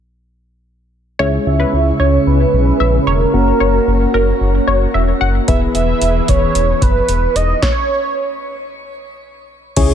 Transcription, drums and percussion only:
5.48 kick loud
5.48 closed hi-hat medium
5.75 closed hi-hat medium
6.02 closed hi-hat medium
6.28 kick medium
6.28 closed hi-hat medium
6.55 closed hi-hat medium
6.82 kick medium
6.82 closed hi-hat medium
7.09 closed hi-hat medium
7.36 closed hi-hat medium
7.62 kick loud
7.62 snare medium
9.77 kick loud
9.77 closed hi-hat medium
9.77 crash medium

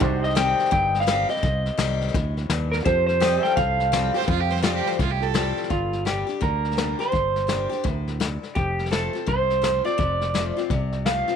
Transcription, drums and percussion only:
0.01 kick loud
0.01 snare soft
0.24 snare soft
0.30 snare soft
0.37 snare loud
0.37 hi-hat pedal medium
0.59 snare soft
0.66 snare soft
0.72 kick loud
0.72 snare soft
0.94 snare soft
1.01 snare soft
1.08 snare loud
1.08 hi-hat pedal medium
1.30 snare soft
1.36 snare soft
1.43 kick loud
1.43 snare soft
1.66 snare soft
1.78 snare loud
1.78 hi-hat pedal medium
2.01 snare soft
2.08 snare soft
2.14 kick loud
2.14 snare soft
2.37 snare soft
2.50 snare loud
2.50 hi-hat pedal medium
2.73 snare soft
2.80 snare soft
2.86 kick loud
2.86 snare soft
3.09 snare soft
3.22 snare loud
3.22 hi-hat pedal medium
3.44 snare soft
3.51 snare soft
3.57 kick loud
3.57 snare soft
3.80 snare soft
3.93 snare loud
3.93 hi-hat pedal medium
4.15 snare soft
4.21 snare soft
4.28 kick loud
4.28 snare soft
4.50 snare soft
4.56 snare soft
4.64 snare loud
4.64 hi-hat pedal medium
4.86 snare soft
4.92 snare soft
4.99 kick loud
4.99 snare soft
5.22 snare soft
5.35 snare loud
5.35 hi-hat pedal medium
5.57 snare soft
5.64 snare soft
5.70 kick medium
5.70 snare soft
5.93 snare soft
6.06 snare medium
6.06 hi-hat pedal medium
6.29 snare soft
6.42 kick medium
6.42 snare soft
6.65 snare soft
6.71 snare soft
6.78 snare medium
6.78 hi-hat pedal medium
7.00 snare soft
7.13 kick medium
7.13 snare soft
7.36 snare soft
7.49 snare medium
7.49 hi-hat pedal medium
7.72 snare soft
7.85 kick loud
7.85 snare soft
8.07 snare soft
8.21 snare loud
8.21 hi-hat pedal medium
8.43 snare soft
8.56 kick loud
8.56 snare soft
8.79 snare soft
8.86 snare soft
8.92 snare medium
8.92 hi-hat pedal medium
9.15 snare soft
9.28 kick medium
9.28 snare soft
9.50 snare soft
9.64 snare loud
9.64 hi-hat pedal medium
9.86 snare soft
9.99 kick loud
9.99 snare soft
10.21 snare soft
10.35 snare medium
10.35 hi-hat pedal medium
10.58 snare soft
10.70 kick loud
10.70 snare soft
10.92 snare soft
11.06 snare medium
11.06 hi-hat pedal medium
11.28 snare soft

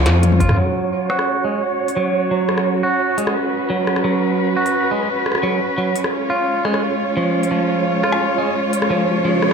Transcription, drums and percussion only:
0.06 snare medium
0.06 closed hi-hat medium
0.23 closed hi-hat medium
0.23 high tom medium
0.32 high tom medium
0.40 kick medium
0.40 open hi-hat medium
0.49 cross-stick medium
0.49 mid tom medium
1.10 cross-stick medium
1.19 cross-stick soft
1.88 open hi-hat soft
2.49 cross-stick soft
2.58 cross-stick medium
3.18 open hi-hat medium
3.27 cross-stick medium
3.87 cross-stick soft
3.96 cross-stick soft
4.66 open hi-hat soft
5.26 cross-stick soft
5.32 cross-stick soft
5.35 cross-stick soft
5.38 cross-stick soft
5.96 open hi-hat medium
6.04 cross-stick medium
6.65 cross-stick soft
6.74 cross-stick soft
7.43 open hi-hat soft
8.04 cross-stick soft
8.12 cross-stick soft
8.73 open hi-hat medium
8.82 cross-stick medium
9.42 cross-stick medium

